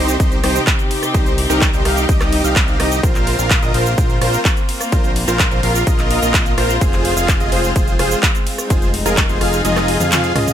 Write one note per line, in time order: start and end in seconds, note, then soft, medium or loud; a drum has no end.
0.00 0.18 C2 loud
0.00 3.00 C3 medium
0.00 3.00 C4 medium
0.00 0.15 D#4 medium
0.00 3.00 D#4 medium
0.00 0.15 G4 medium
0.00 3.00 G4 medium
0.00 0.15 C5 loud
0.08 shaker medium
0.20 0.41 C2 loud
0.20 0.38 D#4 medium
0.20 0.38 G4 medium
0.20 0.38 C5 medium
0.20 kick loud
0.20 closed hi-hat medium
0.20 ride medium
0.20 shaker medium
0.32 closed hi-hat soft
0.32 shaker soft
0.44 0.59 C2 loud
0.44 0.62 D#4 medium
0.44 0.62 G4 medium
0.44 0.62 C5 loud
0.44 cross-stick medium
0.44 open hi-hat loud
0.44 ride medium
0.55 closed hi-hat soft
0.55 shaker medium
0.67 kick loud
0.67 clap loud
0.67 closed hi-hat medium
0.67 ride medium
0.67 shaker medium
0.79 closed hi-hat soft
0.79 shaker soft
0.91 open hi-hat loud
0.91 ride medium
1.03 cross-stick medium
1.03 closed hi-hat soft
1.03 shaker medium
1.14 1.48 C2 loud
1.14 1.33 D#4 medium
1.14 1.33 G4 medium
1.14 1.33 C5 loud
1.14 kick loud
1.14 closed hi-hat medium
1.14 ride medium
1.14 shaker medium
1.26 closed hi-hat soft
1.26 shaker soft
1.38 open hi-hat loud
1.38 ride medium
1.50 1.71 C2 loud
1.50 1.70 D#4 loud
1.50 1.70 G4 medium
1.50 1.70 A#4 loud
1.50 closed hi-hat soft
1.50 shaker medium
1.61 kick loud
1.61 clap loud
1.61 closed hi-hat medium
1.61 ride medium
1.61 shaker medium
1.73 1.83 C2 loud
1.73 1.82 D#4 medium
1.73 1.82 G4 medium
1.73 1.82 C5 loud
1.73 closed hi-hat soft
1.73 shaker soft
1.85 2.07 C2 loud
1.85 2.05 D#4 medium
1.85 2.05 G4 medium
1.85 2.05 F5 medium
1.85 cross-stick medium
1.85 open hi-hat loud
1.85 ride medium
1.97 closed hi-hat soft
1.97 shaker medium
2.09 2.42 C2 loud
2.09 2.42 D#4 medium
2.09 2.42 G4 medium
2.09 2.42 D#5 medium
2.09 kick loud
2.09 closed hi-hat medium
2.09 ride medium
2.09 shaker medium
2.21 cross-stick medium
2.21 clap soft
2.21 closed hi-hat soft
2.21 shaker soft
2.33 open hi-hat loud
2.33 ride medium
2.44 2.77 C2 loud
2.44 2.77 D#4 medium
2.44 2.77 G4 medium
2.44 2.77 F5 medium
2.44 closed hi-hat soft
2.44 shaker medium
2.56 kick loud
2.56 clap loud
2.56 closed hi-hat medium
2.56 ride medium
2.56 shaker medium
2.68 closed hi-hat soft
2.68 shaker soft
2.80 3.01 C2 loud
2.80 3.01 D#4 medium
2.80 3.01 G4 medium
2.80 3.01 D#5 medium
2.80 cross-stick medium
2.80 open hi-hat loud
2.80 ride medium
2.92 closed hi-hat soft
2.92 shaker medium
3.03 3.36 A#1 loud
3.03 6.78 A#3 medium
3.03 10.53 C4 medium
3.03 3.36 F4 loud
3.03 8.66 F4 medium
3.03 3.36 A#4 loud
3.03 3.36 C5 loud
3.03 kick loud
3.03 closed hi-hat medium
3.03 ride medium
3.03 shaker medium
3.15 clap soft
3.15 closed hi-hat soft
3.15 shaker soft
3.27 open hi-hat loud
3.27 ride medium
3.39 3.60 A#1 loud
3.39 3.60 F4 medium
3.39 3.60 A#4 medium
3.39 3.60 F5 medium
3.39 closed hi-hat soft
3.39 shaker medium
3.50 kick loud
3.50 clap loud
3.50 closed hi-hat medium
3.50 ride medium
3.50 shaker medium
3.62 3.72 A#1 loud
3.62 3.72 F4 loud
3.62 3.72 A#4 loud
3.62 3.72 D#5 loud
3.62 closed hi-hat soft
3.62 shaker soft
3.74 3.96 A#1 loud
3.74 3.93 F4 medium
3.74 3.93 A#4 medium
3.74 3.93 C5 loud
3.74 open hi-hat loud
3.74 ride medium
3.86 closed hi-hat soft
3.86 shaker medium
3.98 4.19 A#1 loud
3.98 4.16 F4 medium
3.98 4.16 A#4 medium
3.98 4.16 C5 medium
3.98 kick loud
3.98 closed hi-hat medium
3.98 ride medium
3.98 shaker medium
4.10 closed hi-hat soft
4.10 shaker soft
4.21 4.37 A#1 medium
4.21 4.40 F4 medium
4.21 4.40 A#4 medium
4.21 4.40 C5 loud
4.21 cross-stick medium
4.21 open hi-hat loud
4.21 ride medium
4.33 closed hi-hat soft
4.33 shaker medium
4.45 kick loud
4.45 clap loud
4.45 closed hi-hat medium
4.45 ride medium
4.45 shaker medium
4.57 closed hi-hat soft
4.57 shaker soft
4.69 open hi-hat loud
4.69 ride medium
4.81 cross-stick medium
4.81 closed hi-hat soft
4.81 shaker medium
4.92 5.25 A#1 loud
4.92 5.11 F4 medium
4.92 5.11 A#4 medium
4.92 5.11 C5 loud
4.92 kick loud
4.92 closed hi-hat loud
4.92 ride medium
4.92 shaker medium
5.04 closed hi-hat soft
5.04 shaker soft
5.16 open hi-hat loud
5.16 ride medium
5.28 5.49 A#1 loud
5.28 5.48 F4 loud
5.28 5.48 A#4 medium
5.28 5.48 C5 loud
5.28 closed hi-hat soft
5.28 shaker medium
5.39 kick loud
5.39 clap loud
5.39 closed hi-hat medium
5.39 ride medium
5.39 shaker medium
5.51 5.61 A#1 loud
5.51 5.60 F4 medium
5.51 5.60 A#4 medium
5.51 5.60 C5 loud
5.51 closed hi-hat soft
5.51 shaker soft
5.63 5.84 A#1 loud
5.63 5.83 F4 medium
5.63 5.83 A#4 medium
5.63 5.83 F5 medium
5.63 open hi-hat loud
5.63 ride medium
5.75 closed hi-hat soft
5.75 shaker medium
5.87 6.20 A#1 loud
5.87 6.20 F4 medium
5.87 6.20 A#4 medium
5.87 6.20 D#5 medium
5.87 kick loud
5.87 closed hi-hat medium
5.87 ride medium
5.87 shaker medium
5.99 clap soft
5.99 closed hi-hat soft
5.99 shaker soft
6.11 open hi-hat loud
6.11 ride medium
6.22 6.55 A#1 loud
6.22 6.52 F4 medium
6.22 6.52 A#4 medium
6.22 6.52 D#5 loud
6.22 closed hi-hat soft
6.22 shaker medium
6.34 kick loud
6.34 clap loud
6.34 closed hi-hat loud
6.34 ride medium
6.34 shaker medium
6.46 closed hi-hat soft
6.46 shaker soft
6.58 6.79 A#1 loud
6.58 6.76 F4 medium
6.58 6.76 A#4 medium
6.58 6.76 C5 loud
6.58 cross-stick medium
6.58 open hi-hat loud
6.58 ride medium
6.70 closed hi-hat soft
6.70 shaker medium
6.81 7.14 F1 loud
6.81 10.53 G#3 medium
6.81 7.14 F4 loud
6.81 7.14 G#4 loud
6.81 7.14 C5 loud
6.81 kick loud
6.81 closed hi-hat loud
6.81 ride medium
6.81 shaker medium
6.93 clap soft
6.93 closed hi-hat soft
6.93 shaker soft
7.05 open hi-hat loud
7.05 ride medium
7.17 7.38 F1 loud
7.17 7.38 F4 medium
7.17 7.38 G#4 medium
7.17 7.38 F5 medium
7.17 closed hi-hat soft
7.17 shaker medium
7.28 kick loud
7.28 clap loud
7.28 closed hi-hat loud
7.28 ride medium
7.28 shaker medium
7.40 7.50 F1 loud
7.40 7.50 F4 loud
7.40 7.50 G#4 medium
7.40 7.50 D#5 loud
7.40 closed hi-hat soft
7.40 shaker soft
7.52 7.73 F1 loud
7.52 7.71 F4 medium
7.52 7.71 G#4 medium
7.52 7.71 C5 loud
7.52 open hi-hat loud
7.52 ride medium
7.64 closed hi-hat soft
7.64 shaker medium
7.76 7.97 F1 loud
7.76 7.94 F4 medium
7.76 7.94 G#4 medium
7.76 7.94 C5 loud
7.76 kick loud
7.76 closed hi-hat medium
7.76 ride medium
7.76 shaker medium
7.88 closed hi-hat soft
7.88 shaker soft
7.99 8.15 F1 loud
7.99 8.18 F4 medium
7.99 8.18 G#4 medium
7.99 8.18 C5 loud
7.99 cross-stick medium
7.99 open hi-hat loud
7.99 ride medium
8.11 closed hi-hat soft
8.11 shaker medium
8.23 kick loud
8.23 clap loud
8.23 closed hi-hat loud
8.23 ride medium
8.23 shaker medium
8.35 closed hi-hat soft
8.35 shaker soft
8.47 open hi-hat loud
8.47 ride medium
8.58 cross-stick medium
8.58 closed hi-hat soft
8.58 shaker medium
8.70 9.03 F1 loud
8.70 10.53 D#4 medium
8.70 8.89 F4 medium
8.70 8.89 G#4 medium
8.70 8.89 C5 loud
8.70 kick loud
8.70 closed hi-hat loud
8.70 ride medium
8.70 shaker medium
8.82 closed hi-hat soft
8.82 shaker soft
8.94 open hi-hat loud
8.94 ride medium
9.06 9.27 F1 loud
9.06 9.26 F4 loud
9.06 9.26 G#4 medium
9.06 9.26 A#4 loud
9.06 closed hi-hat soft
9.06 shaker medium
9.17 kick loud
9.17 clap loud
9.17 closed hi-hat loud
9.17 ride medium
9.17 shaker medium
9.29 9.39 F1 loud
9.29 9.38 F4 medium
9.29 9.38 G#4 medium
9.29 9.38 C5 medium
9.29 closed hi-hat soft
9.29 shaker soft
9.41 9.62 F1 loud
9.41 9.61 F4 medium
9.41 9.61 G#4 medium
9.41 9.61 F5 medium
9.41 cross-stick medium
9.41 open hi-hat loud
9.41 ride medium
9.53 closed hi-hat soft
9.53 shaker medium
9.65 9.98 F1 loud
9.65 9.98 F4 medium
9.65 9.98 G#4 medium
9.65 9.98 D#5 loud
9.65 closed hi-hat loud
9.65 high tom medium
9.65 ride medium
9.65 shaker medium
9.76 cross-stick medium
9.76 clap soft
9.76 closed hi-hat soft
9.76 high tom medium
9.76 shaker soft
9.88 open hi-hat loud
9.88 ride medium
10.00 10.33 F2 loud
10.00 10.33 F4 medium
10.00 10.33 G#4 medium
10.00 10.33 F5 medium
10.00 closed hi-hat soft
10.00 mid tom medium
10.00 shaker medium
10.12 clap loud
10.12 closed hi-hat loud
10.12 mid tom medium
10.12 ride medium
10.12 shaker medium
10.24 closed hi-hat soft
10.24 shaker soft
10.36 10.53 C#2 loud
10.36 10.53 F4 medium
10.36 10.53 G#4 medium
10.36 10.53 D#5 medium
10.36 cross-stick medium
10.36 mid tom loud
10.36 open hi-hat loud
10.36 ride medium
10.47 closed hi-hat soft
10.47 mid tom loud
10.47 shaker medium